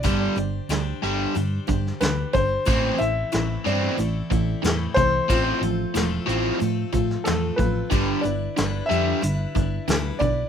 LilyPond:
<<
  \new Staff \with { instrumentName = "Grand piano" } { \time 4/4 \key g \mixolydian \tempo 4 = 91 d''8 r2 r8 b'8 c''8~ | c''8 e''4 d''4. r8 c''8~ | c''8 r2 r8 a'8 b'8~ | b'8 d''4 e''4. r8 d''8 | }
  \new Staff \with { instrumentName = "Steel-string acoustic guitar" } { \time 4/4 \key g \mixolydian <g d' g' c''>8 <d' g' c''>8 <g d' g' c''>4 <g d' g' c''>8 <d' g' c''>8 <g d' g'>8 <d' g' c''>8 | <a, e a c' e' a'>8 <a c' e' a'>8 <a, e a c' e' a'>4 <a c' e' a'>8 <a c' e' a'>8 <a, e a c' e' a'>8 <a c' e' a'>8 | <a, f a c' f' a'>8 <a c' f' a'>8 <a, f a c' f' a'>4 <a c' f' a'>8 <a c' f' a'>8 <a, a c' f' a'>8 <a c' f' a'>8 | <g d' e' b'>8 <d' e' b'>8 <g d' e' b'>4 <g d' e' b'>8 <d' e' b'>8 <g d' e' b'>8 <d' e' b'>8 | }
  \new Staff \with { instrumentName = "Overdriven electric guitar" } { \clef bass \time 4/4 \key g \mixolydian <g, d g>8 <g, d>8 <g, d>8 <g, d g>8 <g, d>8 <g, d>8 <g, d>8 <g, d>8 | <a, e c'>8 <a, e>8 <a, e>8 <a, e c'>8 <a, e>8 <a, e>8 <a, e>8 <a, e>8 | <a, f c'>8 <a, f>8 <a, f>8 <a, f c'>8 <a, f>8 <a, f>8 <a, f>8 <a, f>8 | <g, d g>8 <g, d>8 <g, d>8 <g, d g>8 <g, d>8 <g, d>8 <g, d>8 <g, d>8 | }
  \new Staff \with { instrumentName = "Fingered electric bass" } { \clef bass \time 4/4 \key g \mixolydian g,,8 g,,8 d,8 g,,8 g,8 g,8 d,8 g,,8 | a,,8 a,,8 a,,8 g,8 a,,8 a,,8 e,8 c,8 | a,,8 a,,8 e,,8 a,,8 a,8 a,8 e,8 a,,8 | g,,8 g,,8 g,,8 f,8 g,,8 g,,8 d,8 b,,8 | }
  \new DrumStaff \with { instrumentName = "Drums" } \drummode { \time 4/4 <hh bd>8 hh8 <hh sn>8 hh8 hh8 <hh bd>16 sn16 <hh sn>8 <hh bd>8 | <hh bd>8 hh8 <hh sn>8 hh8 hh8 <hh bd>8 <hh sn>8 <hh bd>8 | <hh bd>8 hh8 <hh sn>8 hh8 hh8 <hh bd>16 sn16 <hh sn>8 <hh bd>8 | <hh bd>8 hh8 <hh sn>8 hh8 hh8 <hh bd>8 <hh sn>8 <hh bd>8 | }
>>